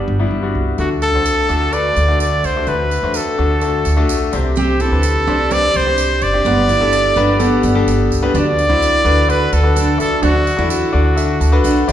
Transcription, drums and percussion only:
0.78 tambourine
1.02 tambourine
1.26 tambourine
1.49 tambourine
1.73 tambourine
1.96 tambourine
2.20 tambourine
2.44 tambourine
2.67 tambourine
2.91 tambourine
3.14 tambourine
3.61 tambourine
3.85 tambourine
4.09 tambourine
4.33 tambourine
4.56 tambourine
4.80 tambourine
5.03 tambourine
5.51 tambourine
5.74 tambourine
5.98 tambourine
6.22 tambourine
6.45 tambourine
6.69 tambourine
6.93 tambourine
7.16 tambourine
7.40 tambourine
7.63 tambourine
7.88 tambourine
8.12 tambourine
8.35 tambourine
8.59 tambourine
8.82 tambourine
9.06 tambourine
9.30 tambourine
9.53 tambourine
9.77 tambourine
10.00 tambourine
10.23 tambourine
10.47 tambourine
10.70 tambourine
11.17 tambourine
11.41 tambourine
11.65 tambourine
11.89 tambourine

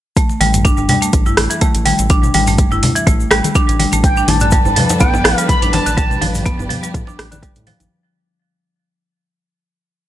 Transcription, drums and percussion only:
0.17 kick, closed hi-hat, shaker
0.29 muted conga, shaker
0.41 open hi-hat, high conga
0.54 closed hi-hat, mid tom, high conga, shaker
0.65 kick, closed hi-hat, muted conga, shaker
0.77 mid tom, shaker
0.89 open hi-hat, muted conga, low conga
1.02 closed hi-hat, shaker
1.13 kick, closed hi-hat, shaker
1.26 mid tom, shaker
1.37 cross-stick, open hi-hat, muted conga
1.51 closed hi-hat, shaker
1.61 kick, closed hi-hat, high conga, shaker
1.75 closed hi-hat, muted conga, shaker
1.86 open hi-hat, high conga
1.99 closed hi-hat, muted conga, shaker
2.10 kick, closed hi-hat, shaker
2.23 muted conga, low conga, shaker
2.34 open hi-hat, high conga
2.47 mid tom, open hi-hat, high conga, shaker
2.58 kick, closed hi-hat, muted conga, shaker
2.72 mid tom, shaker
2.83 open hi-hat, muted conga, low conga
2.96 closed hi-hat, shaker
3.07 kick, closed hi-hat, muted conga, high conga, shaker
3.20 shaker
3.31 cross-stick, open hi-hat, muted conga
3.44 closed hi-hat, high conga, shaker
3.55 kick, closed hi-hat, shaker
3.69 closed hi-hat, muted conga, shaker
3.80 open hi-hat, high conga
3.92 closed hi-hat, muted conga, high conga, shaker
4.04 kick, closed hi-hat, shaker
4.17 muted conga, shaker
4.28 open hi-hat, djembe slap, high conga, djembe tone
4.40 closed hi-hat, mid tom, high conga, shaker
4.51 kick, closed hi-hat, muted conga, shaker
4.65 mid tom, djembe tone, shaker
4.76 open hi-hat, muted conga, low conga
4.89 closed hi-hat, djembe slap, shaker
5.00 kick, closed hi-hat, djembe tone, shaker
5.14 mid tom, djembe slap, shaker
5.25 cross-stick, open hi-hat, muted conga, djembe tone
5.38 closed hi-hat, shaker
5.49 kick, closed hi-hat, high conga, shaker
5.62 closed hi-hat, muted conga, djembe tone, shaker
5.73 open hi-hat, djembe slap, high conga
5.86 closed hi-hat, muted conga, shaker
5.98 kick, closed hi-hat, shaker
6.11 muted conga, low conga, shaker
6.21 open hi-hat, djembe slap, high conga, djembe tone
6.35 mid tom, open hi-hat, high conga, shaker
6.45 kick, closed hi-hat, shaker
6.59 mid tom, djembe tone, shaker
6.70 open hi-hat, muted conga, low conga
6.83 closed hi-hat, shaker
6.94 kick, closed hi-hat, muted conga, high conga, shaker
7.07 djembe slap, shaker
7.19 cross-stick, open hi-hat, muted conga
7.32 closed hi-hat, djembe tone, high conga, shaker
7.43 kick, closed hi-hat, shaker
7.56 closed hi-hat, muted conga, djembe tone, shaker
7.67 open hi-hat, djembe slap, high conga
7.80 closed hi-hat, muted conga, djembe tone, high conga, shaker

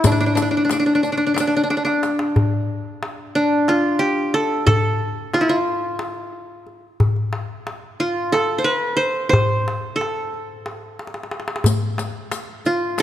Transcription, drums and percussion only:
0.04 riq, darbuka dum
0.20 riq
0.37 riq, darbuka tek
0.69 riq, darbuka tek
1.04 riq, darbuka ka
1.36 riq, darbuka tek
1.70 darbuka tek
1.87 darbuka ka
2.03 riq, darbuka tek
2.19 darbuka ka
2.36 darbuka dum
3.03 darbuka tek
3.36 darbuka ka
3.68 darbuka tek
4.35 darbuka ka
4.67 darbuka dum
4.84 darbuka ka
5.34 darbuka tek
5.67 darbuka ka
5.99 darbuka tek
6.67 darbuka ka
7.00 darbuka dum
7.16 darbuka ka
7.33 darbuka tek
7.67 darbuka tek
8.00 darbuka ka
8.34 darbuka tek
9.00 darbuka ka
9.33 darbuka dum
9.51 darbuka ka
9.68 darbuka tek
10.01 darbuka tek
10.34 darbuka ka
10.66 darbuka tek
10.99 darbuka tek
11.07 darbuka ka
11.14 darbuka tek
11.23 darbuka ka
11.31 darbuka tek
11.40 darbuka ka
11.48 darbuka tek
11.56 darbuka ka
11.64 riq, darbuka dum
11.82 darbuka ka
11.98 riq, darbuka tek
12.31 riq, darbuka tek
12.65 riq, darbuka ka
12.98 riq, darbuka tek

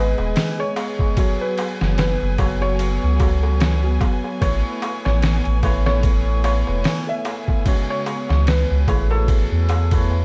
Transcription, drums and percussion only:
0.18 darbuka tek
0.36 snare, open hi-hat, darbuka tek
0.76 ride, darbuka tek
0.99 kick, darbuka tek
1.17 kick, ride, darbuka tek
1.58 ride, darbuka tek
1.81 snare, darbuka tek
1.98 snare, ride, darbuka tek
2.38 kick, ride, darbuka tek
2.62 darbuka tek
2.79 ride, darbuka tek
3.20 kick, ride, darbuka tek
3.43 darbuka tek
3.60 snare, ride, darbuka tek
4.01 kick, ride, darbuka tek
4.24 darbuka tek
4.42 kick, ride, darbuka tek
4.82 ride, darbuka tek
5.05 snare, darbuka tek
5.22 snare, ride, darbuka tek
5.45 ride
5.63 kick, ride, darbuka tek
5.86 snare, darbuka tek
6.03 kick, ride, darbuka tek
6.44 ride, darbuka tek
6.67 darbuka tek
6.84 snare, open hi-hat, darbuka tek
7.25 ride, darbuka tek
7.48 kick, darbuka tek
7.66 kick, ride, darbuka tek
8.06 ride, darbuka tek
8.29 snare, darbuka tek
8.47 snare, ride, darbuka tek
8.88 kick, ride, darbuka tek
9.11 darbuka tek
9.28 kick, ride, darbuka tek
9.69 ride, darbuka tek
9.91 kick, ride, darbuka tek
10.11 darbuka tek

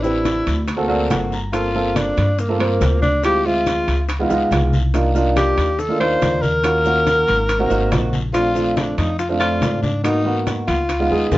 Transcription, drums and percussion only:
0.04 high bongo, high conga, maracas
0.25 high bongo, high conga, high timbale, low timbale, short guiro, maracas
0.47 high bongo, high conga, high timbale, short guiro, maracas
0.68 high bongo, high conga, high timbale, long guiro, maracas
0.89 high conga
1.10 high bongo, low bongo, high conga, high timbale, low timbale, short guiro, maracas
1.32 high bongo, short guiro, maracas
1.53 high bongo, high conga, high timbale, long guiro, maracas
1.75 high bongo, high conga
1.96 high bongo, high conga, high timbale, low timbale, short guiro, maracas
2.17 high bongo, high conga, high timbale, short guiro, maracas
2.39 high bongo, high conga, long guiro, maracas
2.60 high conga, high timbale
2.81 high bongo, low bongo, high conga, high timbale, low timbale, short guiro, maracas
3.02 high bongo, high conga, short guiro, maracas
3.23 high bongo, high conga, high timbale, long guiro, maracas
3.45 high bongo, high conga
3.66 high bongo, high conga, high timbale, low timbale, short guiro, maracas
3.87 high bongo, high conga, high timbale, short guiro, maracas
4.09 high bongo, high conga, high timbale, long guiro, maracas
4.30 high conga, maracas
4.51 high bongo, low bongo, high conga, high timbale, low timbale, short guiro, maracas
4.73 high bongo, high conga, short guiro, maracas
4.94 high bongo, high timbale, long guiro, maracas
5.15 high bongo, high conga, maracas
5.36 high bongo, high conga, high timbale, low timbale, short guiro, maracas
5.58 high bongo, high conga, high timbale, short guiro, maracas
5.79 high bongo, high conga, long guiro, maracas
6.01 high conga, high timbale
6.22 high bongo, low bongo, high conga, high timbale, low timbale, short guiro, maracas
6.43 high bongo, high conga, short guiro, maracas
6.64 high bongo, high timbale, long guiro, maracas
6.85 high bongo, high conga, maracas
7.06 high bongo, high conga, high timbale, low timbale, short guiro, maracas
7.28 high bongo, high timbale, short guiro, maracas
7.49 high bongo, high conga, high timbale, long guiro, maracas
7.71 high conga, maracas
7.92 high bongo, low bongo, high conga, high timbale, low timbale, short guiro, maracas
8.13 high bongo, high conga, short guiro, maracas
8.34 high bongo, high timbale, long guiro, maracas
8.56 high bongo, high conga, maracas
8.76 high bongo, high conga, high timbale, low timbale, short guiro, maracas
8.98 high bongo, high conga, high timbale, short guiro, maracas
9.19 high bongo, high conga, long guiro, maracas
9.41 high conga, high timbale, maracas
9.61 high bongo, low bongo, high conga, high timbale, low timbale, short guiro, maracas
9.83 high bongo, high conga, short guiro, maracas
10.04 high bongo, high timbale, long guiro, maracas
10.25 high bongo, high conga
10.47 high bongo, high conga, high timbale, low timbale, short guiro, maracas
10.67 high bongo, high conga, high timbale, short guiro, maracas
10.89 high bongo, high conga, high timbale, long guiro, maracas
11.11 high conga
11.31 high bongo, low bongo, high conga, high timbale, short guiro, maracas

